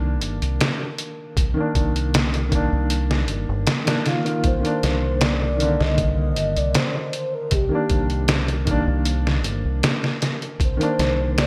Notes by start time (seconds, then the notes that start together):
Already playing: C2 D#3 A#3 D4
0.21 G1, closed hi-hat
0.42 C2, closed hi-hat
0.61 snare, closed hi-hat
0.98 closed hi-hat
1.37 C2, kick, closed hi-hat
1.54 D#3 A#3
1.60 D4
1.75 C2, kick, closed hi-hat
1.96 closed hi-hat
2.14 snare, closed hi-hat
2.34 closed hi-hat
2.49 D#3 A#3, kick, closed hi-hat
2.55 D4
2.72 C2
2.90 closed hi-hat
3.11 snare
3.28 G1, closed hi-hat
3.49 G1
3.67 snare, closed hi-hat
3.84 D#3 A#3 D4, snare, closed hi-hat
4.04 D#3 A#3 F4, snare, closed hi-hat
4.24 D#3 A#3 F4, closed hi-hat
4.44 C2 C5, kick, closed hi-hat
4.60 D#3 A#3
4.65 D4, closed hi-hat
4.83 C2, snare, closed hi-hat
5.21 D5, snare, closed hi-hat
5.56 D#3 A#3, closed hi-hat
5.62 D3
5.80 C2 D#5, snare
5.98 kick, closed hi-hat
6.36 G1, closed hi-hat
6.56 C2 D5, closed hi-hat
6.75 C5, snare, closed hi-hat
7.13 closed hi-hat
7.35 A#4
7.51 C2 G4, kick, closed hi-hat
7.69 D#3 A#3
7.75 D4
7.90 C2, kick, closed hi-hat
8.10 closed hi-hat
8.28 snare, closed hi-hat
8.48 closed hi-hat
8.65 D#3 A#3, kick, closed hi-hat
8.71 D4
8.87 C2
9.05 closed hi-hat
9.27 snare
9.44 G1, closed hi-hat
9.65 C2
9.83 snare, closed hi-hat
10.04 snare
10.22 snare, closed hi-hat
10.42 closed hi-hat
10.60 C2, kick, closed hi-hat
10.64 C5
10.77 D#3 A#3, closed hi-hat
10.83 D4
10.99 C2, snare, closed hi-hat
11.38 D5, snare, closed hi-hat